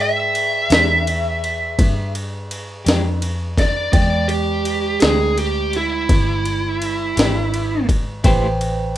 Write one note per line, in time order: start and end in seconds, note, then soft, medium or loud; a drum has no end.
0.00 0.68 G#2 medium
0.00 3.90 G#4 medium
0.00 3.91 D5 soft
0.00 2.12 E5 medium
0.00 3.91 G5 medium
0.35 ride medium
0.70 1.75 E2 medium
0.70 0.95 G#3 medium
0.70 0.94 D4 medium
0.70 0.94 G4 medium
0.70 snare loud
0.70 ride medium
0.74 0.95 E3 soft
1.07 ride medium
1.44 ride medium
1.79 2.84 G2 medium
1.79 kick loud
1.79 ride medium
2.15 ride medium
2.51 ride medium
2.85 3.91 F2 medium
2.85 3.09 E3 medium
2.85 3.08 G#3 medium
2.85 3.08 D4 medium
2.85 3.07 G4 medium
2.85 snare loud
2.85 ride medium
3.22 ride medium
3.58 3.92 D5 medium
3.58 kick medium
3.58 snare soft
3.58 ride medium
3.92 4.98 E2 medium
3.92 8.20 G#3 medium
3.92 8.20 D5 soft
3.92 4.29 D5 medium
3.92 8.20 G5 medium
3.92 kick loud
3.92 ride medium
4.28 4.99 G4 medium
4.28 ride medium
4.65 ride medium
5.00 6.07 D2 medium
5.00 5.24 E3 medium
5.00 5.24 G#3 medium
5.00 5.23 D4 medium
5.00 5.23 G4 medium
5.00 5.36 G#4 medium
5.00 snare loud
5.00 ride medium
5.38 5.73 G4 medium
5.38 ride medium
5.73 7.86 E4 loud
5.73 ride medium
6.09 7.14 G1 medium
6.09 kick loud
6.09 ride medium
6.45 ride medium
6.82 ride medium
7.16 8.22 G#1 medium
7.16 7.39 E3 medium
7.16 7.39 G#3 medium
7.16 7.39 D4 medium
7.16 7.38 G4 medium
7.16 snare loud
7.16 ride medium
7.54 ride medium
7.89 kick medium
7.89 ride medium
8.24 8.98 A1 medium
8.24 8.46 A3 medium
8.24 8.46 E4 medium
8.24 8.46 G4 medium
8.24 8.98 B4 medium
8.24 8.47 C5 medium
8.24 8.98 C5 medium
8.24 8.98 G5 medium
8.24 kick loud
8.24 ride medium
8.61 ride medium